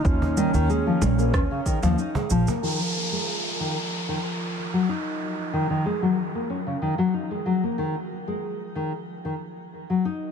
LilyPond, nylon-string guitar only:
\new Staff \with { instrumentName = "Nylon-string guitar" } { \clef bass \time 4/4 \key bes \phrygian \tempo 4 = 93 ees'8 ees16 ees16 aes16 f16 r16 bes16 des'16 des16 ees16 f16 ees'16 aes16 f16 bes16 | ees16 r8 aes8. ees16 r8 ees16 r8. ges16 ees'8~ | ees'8 ees16 ees16 aes16 ges16 r16 bes16 des'16 des16 ees16 ges16 ees'16 aes16 ges16 bes16 | ees16 r8 aes8. ees16 r8 ees16 r8. ges16 ees'8 | }